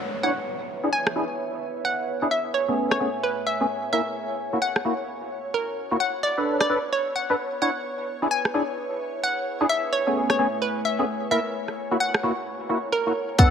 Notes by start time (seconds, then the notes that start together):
Already playing: B4 C#5 E5 F#5, downlifter
0.23 D4 E4 C#5 F#5
0.63 G#5
0.84 D4 E4 G#4
0.93 G#5
1.07 cross-stick
1.16 D4 E4 G#4
1.85 F#5
2.22 D4 E4 G#4
2.31 A3 E5
2.54 C#5
2.68 A3 B3 C#4 G#4
2.91 C#5, cross-stick
3.00 A3 B3 C#4 G#4
3.23 B4
3.47 E5
3.61 A3 B3 C#4 G#4
3.93 A#3 E4 A#4 C#5 E5
4.40 F#5
4.53 A#3 E4 F#4
4.62 F#5
4.76 cross-stick
4.85 A#3 E4 F#4
5.54 A#4
5.91 A#3 E4 F#4
6.00 B4 F#5
6.23 D5
6.37 D4 A4 B4
6.57 D5 E5, cross-stick
6.70 D4 A4 B4
6.93 C#5
7.16 F#5
7.30 D4 A4 B4
7.62 D4 E4 C#5 F#5
8.00 G#5
8.22 D4 E4 G#4
8.31 G#5
8.45 cross-stick
8.54 D4 E4 G#4
9.24 F#5
9.61 D4 E4 G#4
9.69 A3 E5
9.93 C#5
10.07 A3 B3 C#4 G#4
10.30 C#5, cross-stick
10.39 A3 B3 C#4 G#4
10.62 B4
10.85 E5
10.99 A3 B3 C#4 G#4
11.31 A#3 E4 A#4 C#5 E5
11.53 F#5
11.68 cross-stick
11.91 A#3 E4 F#4
12.00 F#5
12.14 cross-stick
12.23 A#3 E4 F#4
12.69 A#3 E4 F#4
12.92 A#4
13.07 A#3 E4 F#4
13.38 B3 D4 A4 E5 F#5, kick, closed hi-hat, sub drop